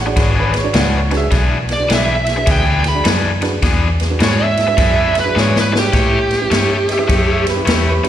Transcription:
Already playing: A1
0.01 F#5
0.06 D4 F#4 G#4 D5, muted overdriven electric guitar stroke
0.16 G#1 E3 B3 D4 G#4 C#5, kick, snare, ride
0.35 E3 B3 D4 G#4
0.39 B4
0.54 G#4 B4, muted overdriven electric guitar stroke, snare, ride
0.59 C#5
0.64 D4 F#4 G#4 D5
0.74 C#2 E3 B3 D4 G#4 F5, snare, ride
0.78 F#5
0.97 C#5
1.11 D4 F#4 G#4 B4, muted overdriven electric guitar stroke, snare, ride
1.16 G#4 E5
1.31 B1 E3 B3 D4 G#4, kick, snare, ride
1.69 G#4 B4, snare, ride
1.73 D5
1.79 D4 F#4 G#4 B4
1.89 B1 E3 B3 D4 G#4, snare, ride
1.93 E5
2.26 G#4 B4, snare, ride
2.36 D4 F#4 G#4 B4, muted overdriven electric guitar stroke
2.46 D2 E3 B3 D4 G#4, kick, snare, ride
2.51 G5
2.65 E3 B3 D4 G#4
2.84 G#4 B4, muted overdriven electric guitar stroke, snare, ride
2.88 B5
2.95 D4 F#4 G#4 D5
3.05 F#2 E3 B3 D4 G#4, snare, ride
3.42 D4 F#4 G#4 B4, muted overdriven electric guitar stroke, snare, ride
3.62 E2 E3 B3 D4 G#4, kick, snare, ride
4.00 G#4 B4, snare, ride
4.10 D4 F#4 G#4 B4
4.20 G#2 E3 B3 D4 G#4, snare, ride
4.24 C#5
4.43 E5
4.57 G#4 B4, snare, ride
4.67 D4 F#4 G#4 B4, muted overdriven electric guitar stroke
4.77 F#2 E3 B3 D4 G#4, kick, snare, ride
4.96 E3 B3 D4 G#4
5.15 G#4 B4, muted overdriven electric guitar stroke, snare, ride
5.20 B4
5.25 D4 F#4 G#4 B4
5.35 G#2 E3 B3 D4 G#4, snare
5.39 C#5
5.56 B4, snare
5.72 D4 F#4 G#4 C#5, muted overdriven electric guitar stroke, snare
5.79 G4
5.93 A2 A3 E4 G4 C#5, kick, snare, ride
6.30 G4 B4, snare, ride
6.41 C#4 E4 G4 B4
6.51 G2 A3 E4 G4 C#5, snare, ride
6.88 G4 B4 D#5, snare, ride
6.92 E5
6.98 C#4 E4 G4 B4, muted overdriven electric guitar stroke
7.08 F#2 A3 E4 G4 C#5, kick, snare, ride
7.12 E5
7.27 A3 E4 G4 C#5
7.31 E5
7.45 G4 B4, muted overdriven electric guitar stroke, snare, ride
7.49 G4 B4
7.56 C#4 E4 G4 B4
7.66 E2 A3 E4 G4 B4 C#5, snare, ride
7.88 G4 B4
8.04 C#4 E4 G4 B4, muted overdriven electric guitar stroke, muted fingered electric bass stroke, ride

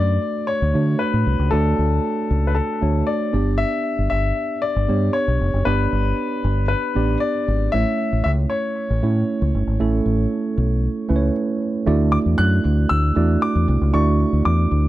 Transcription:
Already playing: F#2 A3 D4 F#4 D5
0.47 C#5
0.62 D2
0.74 D3 A3 D4 F#4 C#5
0.99 B4
1.14 A2
1.27 C2
1.39 C#2
1.51 D2 A3 D4 F#4 A4 D5
1.79 D2
2.31 C#2
2.47 B4
2.55 A4
2.81 D2 A3 D4 F#4 C#5
3.07 D5
3.33 G1 B3 D4 G4 D5
3.58 E5
3.98 G1
4.10 G1 E5
4.62 D5
4.76 G1
4.88 G2 B3 D4 G4 C#5
5.13 C#5
5.28 B1
5.41 F1
5.54 F#1
5.65 G1 B3 D4 G4 B4 D5
5.92 G1
6.44 G1
6.68 B4
6.95 A1 B3 D4 G4 D5
7.20 D5
7.48 G#1
7.72 A1 A3 C#4 E4 C#5 E5
8.13 A1
8.24 C#2 E5
8.50 C#5
8.90 A1
9.03 A2 A3 C#4 E4 C#5
9.42 C#2
9.54 G1
9.67 G#1
9.80 A1 A3 C#4 E4 A4
10.06 A1
10.58 B1
11.09 C#2 A3 C#4 E4 B4
11.16 C#5
11.86 D2 A3 D4 E4 F#4 D5
12.12 D6
12.26 E2
12.38 F#2 F#6
12.65 D2
12.89 D2 E6
13.16 E2 A3 D4 E4 F#4 D5
13.42 D6
13.55 E2
13.68 C2
13.81 C#2
13.93 D2 A3 D4 E4 F#4 D5 C#6
14.33 D2
14.45 E2 D6
14.72 D2

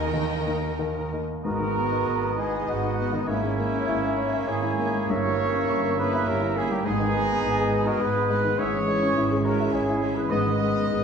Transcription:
Already playing: D#2 D#3 A#3 D#4 A#4 D#5 G#5
0.11 D#2 D#3 G5
0.46 A#3 D#4
0.79 D#2 D#3
1.12 A#3 D#4
1.44 G#1 G#2 B3 D#4 F#4 A#4 D#5 A#5
1.60 D#3
1.76 G#3 B3 D#5
1.91 D#4
2.07 G#1 G#2 B3
2.21 B4
2.37 G#3 B3 E4 G#4 D#5 G#5
2.53 B4
2.68 G#1 G#2 D#4 F#4 D#5 F#5
2.83 D#4
2.98 G#3 B3 D#5
3.13 D#3 B3 D#4 D#5
3.26 G#1 G#2 A#3 C#4 E4 C#5 E5
3.43 G#3
3.58 A#3 C#4 E5
3.73 C#4
3.87 G#1 G#2 E4
4.03 A#4
4.18 A#3 C#4 C#5 E5
4.33 E5
4.47 G#1 G#2 E4 G#4 C#5 G#5
4.63 E4
4.79 A#3 C#4 E5
4.95 G#3
5.08 G1 G2 E4 A#4 C#5 E5 C#6
5.26 G3
5.39 A#3 C#4 E5
5.55 C#4
5.68 G1 G2 E4
5.83 A#4
5.98 A#3 C#4 G#4 B4 C#5 E5 B5
6.13 E5
6.28 G1 G2 G4 A#4 C#5 A#5
6.41 E4
6.56 A#3 C#4 E4 G#4 E5 G#5
6.71 G3 D#4 G4 G5
6.84 G#1 G#2 G#3 B3 D#4 G#4 D#5 G#5
7.00 D#3
7.14 G#3 B3 D#5
7.28 B3
7.42 G#1 G#2 D#4
7.59 G#4
7.72 G#3 B3 B4 D#5
7.85 F#4 A#4 D#5 A#5
7.99 G#1 G#2 G#4 B4 B5
8.15 D#4
8.29 G#3 B3 D#5
8.45 D#3
8.57 G#1 G#2 C#4 E4 G#4 C#5 E5 C#6
8.74 E3
8.87 G#3 C#4 E5
9.02 C#4
9.16 G#1 G#2 E4
9.31 G#4
9.44 G#3 C#4 F#4 A#4 C#5 E5 A#5
9.60 E5
9.72 G#1 G#2 E4 G#4 C#5 G#5
9.89 E4
10.01 G#3 C#4 E5
10.15 E3 G#4 B4 B5
10.29 G#1 G#2 G#3 B3 D#4 B4 D#5 D#6
10.46 D#3
10.59 G#3 B3 D#5
10.75 B3
10.90 G#1 G#2 B3 D#4

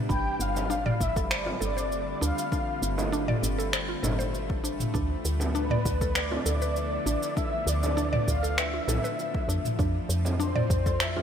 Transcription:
Already playing: G3 B4
0.09 G1 D3 A3 C4 D4 F4 G5 B5, kick, shaker
0.39 G1 F5, shaker
0.56 frame drum, shaker
0.70 D4, shaker
0.86 D5, mid tom
1.01 G1 E5, kick, shaker
1.16 A4, kick, shaker
1.31 C5 D5, finger snap, shaker
1.46 F4, frame drum
1.60 G1 A4 D5, shaker
1.77 C5, shaker
1.92 shaker
2.21 D2 D4 F5, shaker
2.38 shaker
2.52 D4, kick, shaker
2.82 G1, shaker
2.98 frame drum, shaker
3.12 D4, shaker
3.28 D5, mid tom
3.43 G1, shaker
3.58 A4, shaker
3.73 C5, finger snap, shaker
3.89 F4
4.03 G1 A4, mid tom, frame drum, shaker
4.19 C5, shaker
4.35 shaker
4.50 kick
4.64 D4, shaker
4.80 mid tom, shaker
4.94 D2 D3 F3 B3 D4 E4, kick, shaker
5.25 D2, shaker
5.40 frame drum, shaker
5.55 D4 B4, shaker
5.70 D5, mid tom
5.85 D2, kick, shaker
6.01 A4, kick, shaker
6.15 B4 D5, finger snap, shaker
6.31 F4, frame drum
6.46 D2 A4, shaker
6.62 B4, shaker
6.76 shaker
7.06 A1 D4, shaker
7.23 shaker
7.37 D4 E5, kick, shaker
7.66 D2 D5, shaker
7.83 frame drum, shaker
7.97 D4, shaker
8.13 D5, mid tom
8.28 D2 F5, kick, shaker
8.43 A4, shaker
8.58 B4 E5, finger snap, shaker
8.74 F4
8.88 B1 A4, mid tom, frame drum, shaker
9.04 B4, shaker
9.19 shaker
9.35 kick
9.48 F2 D4, shaker
9.65 mid tom, shaker
9.79 F2 C3 A3 C4 D4 F4, kick, shaker
10.09 F2, shaker
10.25 frame drum, shaker
10.40 D4 C5, shaker
10.55 D5, mid tom
10.70 F2, kick, shaker
10.86 A4, kick, shaker
11.00 C5 E5, finger snap, shaker
11.16 F4, frame drum

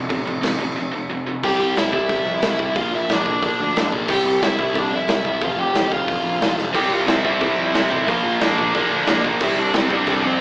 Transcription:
0.10 A1 F2 C3, kick, crash
0.27 A1 F2 C3, crash
0.43 A1 F2 C3, snare, crash
0.60 A1 F2 C3, crash
0.78 F2 C3
0.94 F2 C3
1.10 F2 C3
1.28 F2 C3
1.43 C2 C3 G3 C4 G4 G5, kick, crash
1.60 C2
1.76 C2 C3 G3 C4 E4 E5, snare, open hi-hat
1.93 C2 C3 G3 C4 E4 E5, kick
2.09 C2 C3 G3 C4, kick, open hi-hat
2.26 F2
2.42 C2 C3 G3 C4, snare, open hi-hat
2.59 C2 C3 G3 C4, kick
2.75 A#1 A#2 F3 A#3 F4 F5, kick, open hi-hat
2.92 A#1 E4 E5
3.09 A#1 A#2 F3 A#3 D5, snare, open hi-hat
3.13 D4
3.26 A#1 A#2 F3 A#3, kick
3.42 A#1 A#2 F3 A#3 D4 D5, kick, open hi-hat
3.60 D2
3.76 A#1 A#2 F3 A#3, snare, open hi-hat
3.92 A#1 A#2 F3 A#3, kick
4.08 C2 C3 G3 C4 G4 G5, kick, crash
4.25 C2
4.42 C2 C3 G3 C4 E4 E5, snare, open hi-hat
4.58 C2 C3 G3 C4 E4 E5, kick
4.75 C2 C3 G3 C4 D4 D5, kick, open hi-hat
4.91 F2
4.95 E4 E5
5.07 C2 C3 G3 C4, snare, open hi-hat
5.25 C2 C3 G3 C4 E5, kick
5.29 E4
5.41 F1 F2 C3 F3 F4 F5, kick, open hi-hat
5.57 F1 G4 G5
5.74 F1 F2 C3 F3, snare, open hi-hat
5.91 F1 F2 C3 F3 F4 F5, kick
6.08 F1 F2 C3 F3, kick, open hi-hat
6.24 A#1
6.41 F1 F2 C3 F3, snare, open hi-hat
6.57 F1 F2 C3 F3, snare
6.74 C2 C3 G3 C4 G4 G5, kick, open hi-hat, crash
6.90 C2 F4 F5
7.06 C2 C3 G3 C4 E4 E5, snare, open hi-hat
7.24 C2 C3 G3 C4 E4 E5, kick
7.41 C2 C3 G3 C4, kick, open hi-hat
7.56 F2
7.73 C2 C3 G3 C4, snare, open hi-hat
7.91 A1 C3 G3 C4, kick
8.07 A#1 A#2 F3 A#3 F4 F5, kick, open hi-hat
8.25 A#1
8.40 A#1 A#2 F3 A#3 D4 D5, snare, open hi-hat
8.58 A#1 A#2 F3 A#3, kick
8.74 A#1 A#2 F3 A#3 D4 D5, kick, open hi-hat
8.91 D2
9.07 A#1 A#2 F3 A#3, snare, open hi-hat
9.24 A#1 A#2 F3 A#3, kick
9.40 C2 C3 G3 C4 E4 E5, kick, crash
9.57 C2 D4 D5
9.73 C2 C3 G3 C4 C5, snare, open hi-hat
9.90 C2 C3 G3 C4 D4 D5, kick
10.07 C2 C3 G3 C4, kick, open hi-hat
10.23 F2 C4 C5

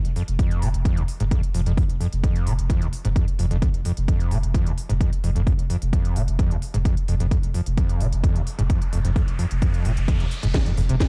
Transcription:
0.05 F1, closed hi-hat
0.16 F2, open hi-hat
0.28 F1, closed hi-hat
0.39 F2, kick, closed hi-hat
0.51 closed hi-hat
0.62 F1 A#2, open hi-hat
0.74 F1, closed hi-hat
0.85 F2, kick, closed hi-hat
0.97 F1 D#2, closed hi-hat
1.08 open hi-hat
1.20 F1 G#2, closed hi-hat
1.31 F2, kick, closed hi-hat
1.43 closed hi-hat
1.54 F1 F2, open hi-hat
1.66 F1 F2, closed hi-hat
1.77 F2, kick, open hi-hat
1.89 F1, closed hi-hat
2.00 F2, open hi-hat
2.12 F1, closed hi-hat
2.24 F2, kick, closed hi-hat
2.36 closed hi-hat
2.47 F1 A#2, open hi-hat
2.59 F1, closed hi-hat
2.70 F2, kick, closed hi-hat
2.82 F1 D#2, closed hi-hat
2.93 open hi-hat
3.05 F1 G#2, closed hi-hat
3.16 F2, kick, closed hi-hat
3.28 closed hi-hat
3.39 F1 F2, open hi-hat
3.51 F1 F2, closed hi-hat
3.62 F2, kick, closed hi-hat
3.74 F1, closed hi-hat
3.85 F2, open hi-hat
3.97 F1, closed hi-hat
4.08 F2, kick, closed hi-hat
4.20 closed hi-hat
4.31 F1 A#2, open hi-hat
4.43 F1, closed hi-hat
4.54 F2, kick, closed hi-hat
4.66 F1 D#2, closed hi-hat
4.78 open hi-hat
4.89 F1 G#2, closed hi-hat
5.01 F2, kick, closed hi-hat
5.13 closed hi-hat
5.24 F1 F2, open hi-hat
5.35 F1 F2, closed hi-hat
5.47 F2, kick, open hi-hat
5.59 F1, closed hi-hat
5.70 F2, open hi-hat
5.82 F1, closed hi-hat
5.93 F2, kick, closed hi-hat
6.05 closed hi-hat
6.16 F1 A#2, open hi-hat
6.28 F1, closed hi-hat
6.39 F2, kick, closed hi-hat
6.51 F1 D#2, closed hi-hat
6.62 open hi-hat
6.74 F1 G#2, closed hi-hat
6.85 F2, kick, closed hi-hat, riser
6.97 closed hi-hat
7.08 F1 F2, open hi-hat
7.20 F1 F2, closed hi-hat
7.31 F2, kick, closed hi-hat
7.43 F1, closed hi-hat
7.54 F2, open hi-hat
7.66 F1, closed hi-hat
7.77 F2, kick, closed hi-hat
7.89 closed hi-hat
8.00 F1 A#2, open hi-hat
8.12 F1, closed hi-hat
8.23 F2, kick, closed hi-hat
8.35 F1 D#2, closed hi-hat
8.47 open hi-hat
8.59 F1 G#2, closed hi-hat
8.70 F2, kick, closed hi-hat
8.82 closed hi-hat
8.93 F1 F2, open hi-hat
9.05 F1 F2, closed hi-hat
9.16 F2, kick, open hi-hat
9.28 F1, closed hi-hat
9.39 F2, open hi-hat
9.51 F1, closed hi-hat
9.62 F2, kick, closed hi-hat
9.74 closed hi-hat
9.85 F1 A#2, open hi-hat
9.97 F1, closed hi-hat
10.08 F2, kick, closed hi-hat
10.20 F1 D#2, closed hi-hat
10.31 open hi-hat
10.43 F1 G#2, closed hi-hat
10.54 F2, kick, snare, closed hi-hat, crash, impact
10.66 F2, closed hi-hat
10.77 F1 F2, open hi-hat
10.89 F1 C3, closed hi-hat
11.00 F1, kick, snare, closed hi-hat

